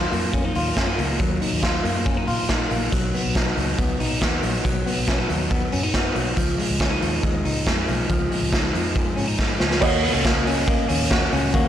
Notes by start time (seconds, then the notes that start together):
Already playing: F#3 D#4 F4
0.12 F2 A#3, open hi-hat
0.33 F2 C#4, kick, closed hi-hat
0.45 D#4
0.55 D#2 F4, open hi-hat
0.77 F#2 C#4, kick, snare, closed hi-hat
0.88 D#4
0.98 C#2 A#3, open hi-hat
1.19 F#3, kick, closed hi-hat
1.41 D#4, open hi-hat
1.52 D#2
1.63 F4, kick, snare, closed hi-hat
1.84 F#2 A#3, open hi-hat
2.06 C#4, kick, closed hi-hat
2.17 D#4
2.27 A#2 F4, open hi-hat
2.49 D#4, kick, snare, closed hi-hat
2.71 A#1 A#3, open hi-hat
2.92 B1 F#3, kick, closed hi-hat
3.14 B3, open hi-hat
3.25 B1
3.35 D#4, kick, snare, closed hi-hat
3.57 C#2 F#3, open hi-hat
3.78 B3, kick, closed hi-hat
4.00 B1 D#4, open hi-hat
4.21 D#2 B3, kick, snare, closed hi-hat
4.43 A#1 F#3, open hi-hat
4.65 B1 F#3, kick, closed hi-hat
4.86 B3, open hi-hat
4.97 B1
5.07 C#4, kick, snare, closed hi-hat
5.18 D#4
5.29 D#2 F#3, open hi-hat
5.51 B3, kick, closed hi-hat
5.72 F#2 C#4, open hi-hat
5.83 D#4
5.94 B3, kick, snare, closed hi-hat
6.15 B1 F#3, open hi-hat
6.36 C#2 F3, kick, closed hi-hat
6.58 G#3, open hi-hat
6.70 C#2
6.80 C#4, kick, snare, closed hi-hat
6.91 D#4
7.02 D#2 F3, open hi-hat
7.23 D#2 G#3, kick, closed hi-hat
7.45 C#2 D#4, open hi-hat
7.67 F2 G#3, kick, snare, closed hi-hat
7.87 B1 F3, open hi-hat
8.09 C#2 F3, kick, closed hi-hat
8.31 G#3, open hi-hat
8.42 C#2
8.52 D#4, kick, snare, closed hi-hat
8.73 F2 F3, open hi-hat
8.94 G#3, kick, closed hi-hat
9.16 G#2 C#4, open hi-hat
9.27 D#4
9.38 G#3, kick, snare
9.60 C#2 F3, snare
9.71 snare
9.80 D#2 A#3 F#4 C#5 D#5, kick, crash
10.03 B3, open hi-hat
10.14 C#2 C#4
10.25 A#3, kick, snare, closed hi-hat
10.46 C#4, open hi-hat
10.68 A#3, kick, closed hi-hat
10.88 D#2 C#4, open hi-hat
11.10 F#4, kick, snare, closed hi-hat
11.32 C#2 C#4, open hi-hat
11.54 D#2 A#3 F#4, kick, closed hi-hat